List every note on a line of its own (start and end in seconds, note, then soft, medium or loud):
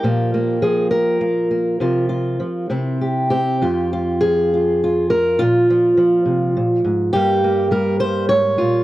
0.00 1.75 A#2 medium
0.00 1.20 G4 medium
0.04 0.61 F3 medium
0.04 0.33 A#3 medium
0.34 1.20 A#3 medium
0.62 1.79 F3 medium
0.62 0.90 G#4 medium
0.91 3.01 A#4 medium
1.21 1.50 A#3 soft
1.51 1.79 A#3 soft
1.80 2.39 C3 medium
1.80 2.38 F3 soft
1.80 2.08 F4 soft
2.09 2.65 F4 soft
2.40 2.69 F3 medium
2.70 3.61 C3 medium
2.70 3.30 C4 soft
2.70 3.58 E4 soft
3.01 3.29 G4 soft
3.30 3.57 C4 medium
3.30 4.80 G4 medium
3.62 5.39 F2 medium
3.62 3.92 F4 soft
3.93 4.53 F4 medium
4.21 5.68 F3 soft
4.21 5.09 G#4 medium
4.54 4.82 F4 soft
4.84 5.37 F4 soft
5.10 5.39 A#4 medium
5.39 6.55 A#2 medium
5.39 7.13 F4 medium
5.70 5.96 F3 soft
5.97 7.13 F3 medium
6.26 6.55 C3 soft
6.57 6.84 A#2 medium
6.84 7.13 G#2 medium
7.13 8.01 G2 medium
7.13 7.70 G3 soft
7.13 7.43 A#3 medium
7.13 7.71 G4 loud
7.44 8.84 A#3 soft
7.71 8.84 G3 medium
7.71 7.99 A#4 medium
8.00 8.30 G2 medium
8.00 8.28 C5 loud
8.29 8.59 G#2 medium
8.29 8.84 C#5 loud
8.58 8.84 A#2 medium
8.58 8.84 F4 medium